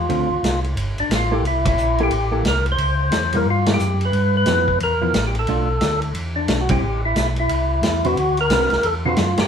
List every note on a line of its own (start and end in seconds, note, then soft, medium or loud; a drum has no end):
0.00 0.60 F4 medium
0.09 0.29 D2 medium
0.09 0.29 D3 medium
0.09 0.28 A3 medium
0.09 0.29 C4 medium
0.09 0.29 F4 medium
0.09 ride medium
0.31 0.37 D2 soft
0.43 0.76 C2 medium
0.43 snare medium
0.43 hi-hat pedal medium
0.43 ride medium
0.64 ride soft
0.76 0.96 G1 medium
0.76 ride medium
0.97 1.04 G1 soft
0.97 1.12 D4 medium
0.97 ride soft
1.09 1.42 A1 medium
1.09 snare medium
1.09 hi-hat pedal medium
1.09 ride medium
1.16 1.35 F4 medium
1.32 1.43 A#3 medium
1.32 1.43 E4 medium
1.32 1.44 G4 medium
1.32 1.44 A4 medium
1.43 1.76 C2 medium
1.43 ride medium
1.47 1.66 E4 medium
1.65 2.01 E4 loud
1.65 kick medium
1.65 ride medium
1.76 2.10 A#1 medium
1.76 hi-hat pedal medium
1.98 2.11 A#3 medium
1.98 2.11 E4 medium
1.98 2.11 A4 medium
1.98 ride soft
2.03 2.44 G4 medium
2.10 2.43 A1 medium
2.10 ride medium
2.31 2.43 A#3 medium
2.31 2.44 E4 medium
2.31 2.44 A4 medium
2.43 2.77 C2 medium
2.43 snare medium
2.43 hi-hat pedal medium
2.43 ride medium
2.48 2.66 A#4 medium
2.66 ride soft
2.72 3.38 C5 loud
2.78 3.11 C#2 medium
2.78 ride medium
3.11 3.44 E2 medium
3.11 snare medium
3.11 hi-hat pedal medium
3.11 ride medium
3.32 3.45 G3 medium
3.32 3.45 A#3 medium
3.32 3.46 E4 medium
3.32 ride medium
3.37 3.48 A#4 medium
3.45 3.78 G2 medium
3.50 3.68 F4 medium
3.66 3.78 G3 medium
3.66 3.79 A#3 medium
3.66 3.79 E4 medium
3.66 snare medium
3.66 ride medium
3.74 4.05 G4 medium
3.79 4.12 F#2 loud
3.79 hi-hat pedal medium
4.01 ride soft
4.05 4.36 B4 medium
4.12 4.45 G2 medium
4.12 ride soft
4.37 4.79 B4 loud
4.46 4.79 F2 medium
4.46 4.66 F3 medium
4.46 4.66 B3 medium
4.46 4.66 E4 medium
4.46 snare medium
4.46 hi-hat pedal medium
4.46 ride medium
4.68 kick soft
4.80 5.13 E2 medium
4.80 5.25 A#4 medium
4.80 ride medium
5.02 5.13 F3 medium
5.02 5.13 B3 medium
5.02 5.13 E4 medium
5.14 5.47 A1 medium
5.14 snare medium
5.14 hi-hat pedal medium
5.14 ride medium
5.27 5.35 G4 medium
5.35 ride soft
5.39 6.00 A4 medium
5.47 5.80 B1 medium
5.47 5.67 A3 medium
5.47 5.67 D4 medium
5.47 5.68 F4 medium
5.47 ride medium
5.81 6.14 D2 medium
5.81 snare medium
5.81 hi-hat pedal medium
5.81 ride medium
6.02 ride soft
6.15 6.48 E2 medium
6.15 ride medium
6.36 6.61 D4 medium
6.48 6.81 B1 medium
6.48 snare medium
6.48 hi-hat pedal medium
6.48 ride medium
6.61 6.70 F#4 medium
6.69 6.81 G3 medium
6.69 6.81 C4 medium
6.69 6.82 E4 medium
6.69 7.02 G4 loud
6.69 kick medium
6.69 ride medium
6.82 7.14 A1 medium
7.05 7.17 E4 medium
7.16 7.48 B1 medium
7.16 7.27 E4 medium
7.16 snare medium
7.16 hi-hat pedal medium
7.16 ride medium
7.36 8.07 E4 medium
7.36 ride soft
7.48 7.82 C2 medium
7.48 ride medium
7.82 8.15 E2 medium
7.82 snare medium
7.82 hi-hat pedal medium
7.82 ride medium
8.04 8.16 D3 medium
8.04 8.16 C4 medium
8.04 8.39 F#4 loud
8.04 8.17 F#4 medium
8.04 8.17 B4 medium
8.04 ride soft
8.16 8.49 D2 medium
8.16 ride medium
8.37 8.87 A#4 loud
8.37 ride soft
8.50 8.70 C2 medium
8.50 8.70 D3 medium
8.50 8.70 C4 medium
8.50 8.70 F#4 medium
8.50 8.70 B4 medium
8.50 snare medium
8.50 hi-hat pedal medium
8.50 ride medium
8.61 snare soft
8.70 8.78 C2 soft
8.70 snare soft
8.70 ride soft
8.83 9.17 E2 medium
8.83 8.95 A4 loud
8.83 ride medium
9.05 9.17 D3 medium
9.05 9.17 C4 medium
9.05 9.40 F4 medium
9.05 9.17 F#4 medium
9.05 9.17 B4 medium
9.16 9.37 F#2 medium
9.16 snare medium
9.16 hi-hat pedal medium
9.16 ride medium
9.37 9.45 F#2 soft
9.37 9.48 G4 loud
9.37 snare medium
9.37 ride medium